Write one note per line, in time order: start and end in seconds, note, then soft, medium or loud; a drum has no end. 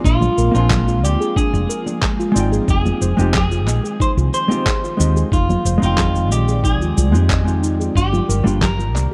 0.00 2.64 F3 medium
0.00 7.92 G#3 medium
0.00 2.64 A#3 medium
0.00 2.64 F4 medium
0.00 downlifter medium
0.04 0.28 A#1 medium
0.04 0.20 D4 loud
0.04 0.54 F4 medium
0.04 kick loud
0.04 shaker soft
0.21 0.36 F4 medium
0.21 high conga medium
0.21 low conga medium
0.21 shaker soft
0.38 0.49 A#1 medium
0.38 0.53 A#4 loud
0.38 shaker medium
0.51 1.03 A#1 medium
0.51 2.30 A#3 medium
0.51 2.31 C4 medium
0.51 0.69 D4 medium
0.51 2.32 D4 medium
0.51 1.04 F4 medium
0.51 shaker soft
0.57 2.31 G#3 loud
0.57 2.33 F4 medium
0.70 0.80 G#4 medium
0.70 kick loud
0.70 clap loud
0.70 low conga medium
0.70 shaker soft
0.87 1.02 F4 medium
0.87 shaker soft
1.03 1.15 D2 medium
1.03 1.35 G4 medium
1.03 1.13 D5 loud
1.03 high conga medium
1.03 shaker medium
1.20 1.35 G#4 medium
1.20 shaker soft
1.36 1.52 D4 loud
1.36 2.32 G#4 medium
1.36 kick loud
1.36 shaker soft
1.53 1.64 F1 loud
1.53 1.68 F4 medium
1.53 shaker soft
1.69 1.85 A#4 loud
1.69 shaker medium
1.86 2.01 D4 medium
1.86 high conga medium
1.86 shaker soft
2.02 2.12 G#4 medium
2.02 kick loud
2.02 clap loud
2.02 shaker soft
2.19 2.34 F4 medium
2.19 shaker soft
2.32 2.58 G#1 medium
2.32 3.13 G#3 medium
2.32 3.14 C4 medium
2.32 2.45 D5 loud
2.36 3.15 D#4 medium
2.36 3.15 F4 medium
2.36 3.16 G5 loud
2.36 shaker medium
2.52 2.67 G#4 loud
2.52 shaker soft
2.68 2.91 F1 medium
2.68 7.92 D#3 medium
2.68 9.14 F3 medium
2.68 5.30 C4 medium
2.68 2.84 D#4 loud
2.68 3.17 G#4 loud
2.68 kick loud
2.68 shaker soft
2.85 3.00 F4 medium
2.85 high conga medium
2.85 low conga medium
2.85 shaker soft
3.01 3.13 F1 medium
3.01 3.17 C5 loud
3.01 shaker medium
3.17 3.67 F1 medium
3.17 3.36 G#3 loud
3.17 3.36 C4 medium
3.17 3.33 D#4 medium
3.17 3.37 D#4 medium
3.17 3.37 F4 medium
3.17 3.35 G4 loud
3.17 shaker soft
3.21 3.38 G4 loud
3.34 3.44 G#4 medium
3.34 3.97 G#4 loud
3.34 kick loud
3.34 clap loud
3.34 low conga medium
3.34 shaker soft
3.51 3.66 F4 medium
3.51 shaker soft
3.67 3.79 A#1 medium
3.67 3.77 D#5 loud
3.67 clap soft
3.67 high conga medium
3.67 shaker medium
3.84 3.99 G#4 medium
3.84 shaker soft
4.00 4.16 D#4 loud
4.00 4.10 C5 loud
4.00 kick loud
4.00 shaker soft
4.17 4.28 C2 medium
4.17 4.32 F4 medium
4.17 shaker soft
4.34 4.49 C5 medium
4.34 5.29 C5 loud
4.34 shaker medium
4.48 4.67 G#3 medium
4.48 4.68 C4 medium
4.48 4.68 D#4 medium
4.48 4.65 D#4 medium
4.48 4.69 F4 medium
4.48 4.69 G4 loud
4.48 high conga loud
4.48 shaker soft
4.66 4.76 G#4 medium
4.66 kick loud
4.66 clap loud
4.66 shaker soft
4.84 4.98 F4 medium
4.84 shaker soft
4.97 5.22 D#2 medium
4.97 5.28 G#3 medium
4.97 5.28 C4 medium
4.97 5.29 D#4 medium
4.97 5.29 F4 medium
4.97 5.30 G4 medium
4.97 5.09 D#5 loud
4.97 shaker medium
5.16 5.31 G#4 loud
5.16 shaker soft
5.32 5.55 F1 medium
5.32 5.48 D#4 loud
5.32 5.82 F4 medium
5.32 7.93 D5 medium
5.32 kick loud
5.32 shaker soft
5.49 5.64 F4 medium
5.49 high conga loud
5.49 low conga medium
5.49 shaker soft
5.65 5.77 F1 medium
5.65 5.81 C5 loud
5.65 shaker medium
5.78 7.09 G#3 medium
5.78 7.09 C4 medium
5.78 7.11 D#4 medium
5.82 6.31 F1 medium
5.82 5.97 D#4 medium
5.82 7.11 F4 medium
5.82 6.32 F4 medium
5.82 7.12 G5 loud
5.82 shaker soft
5.98 6.08 G#4 medium
5.98 kick loud
5.98 clap loud
5.98 low conga medium
5.98 shaker soft
6.15 6.30 F4 medium
6.15 shaker soft
6.31 6.81 A#1 medium
6.31 6.62 G4 medium
6.31 6.41 D#5 loud
6.31 high conga medium
6.31 shaker medium
6.48 6.63 G#4 medium
6.48 shaker soft
6.64 6.80 D#4 loud
6.64 7.59 G#4 medium
6.64 kick loud
6.64 shaker soft
6.81 6.92 D#2 medium
6.81 6.96 F4 medium
6.81 shaker soft
6.98 7.14 C2 loud
6.98 7.07 F4 medium
6.98 shaker medium
7.12 7.88 F2 medium
7.12 7.42 G#3 medium
7.12 7.43 C4 medium
7.12 7.43 D#4 medium
7.12 7.30 D#4 medium
7.12 7.43 F4 medium
7.12 high conga medium
7.12 shaker soft
7.16 7.44 G4 medium
7.30 7.46 D#5 medium
7.30 kick loud
7.30 clap loud
7.30 shaker soft
7.44 7.93 G#3 medium
7.44 7.93 C4 medium
7.44 7.94 D#4 medium
7.44 7.62 D#4 medium
7.44 7.94 F4 medium
7.44 7.95 G4 medium
7.44 shaker soft
7.63 7.78 D#4 loud
7.63 shaker medium
7.79 7.95 G#4 medium
7.79 shaker soft
7.96 8.19 G1 medium
7.96 9.14 A#2 medium
7.96 9.14 G3 medium
7.96 9.14 A#3 medium
7.96 8.11 D4 loud
7.96 8.63 G4 loud
7.96 kick loud
7.96 shaker soft
8.12 8.27 F4 medium
8.12 high conga medium
8.12 low conga medium
8.12 shaker soft
8.29 8.41 G1 medium
8.29 8.44 A#4 loud
8.29 shaker medium
8.44 8.94 G1 medium
8.44 8.63 G3 medium
8.44 8.63 A#3 medium
8.44 8.64 D4 medium
8.44 8.60 D4 medium
8.44 8.64 F4 medium
8.44 8.65 G4 loud
8.44 shaker soft
8.61 8.71 G4 medium
8.61 9.14 A#4 loud
8.61 kick loud
8.61 clap loud
8.61 low conga medium
8.61 shaker soft
8.79 8.93 F4 medium
8.79 shaker soft
8.94 9.06 C2 medium
8.94 9.04 D5 loud
8.94 clap soft
8.94 high conga medium
8.94 shaker medium